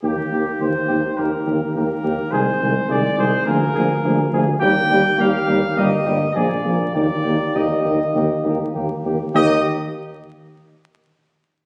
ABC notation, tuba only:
X:1
M:4/4
L:1/8
Q:1/4=104
K:Eb
V:1 name="Tuba" clef=bass
E,, E,, E,, E,, E,, E,, E,, E,, | C,, C,, C,, C,, D,, D,, D,, D,, | E,, E,, E,, E,, G,,, G,,, B,,, B,,, | E,, E,, E,, E,, E,, E,, E,, E,, |
E,, z6 z |]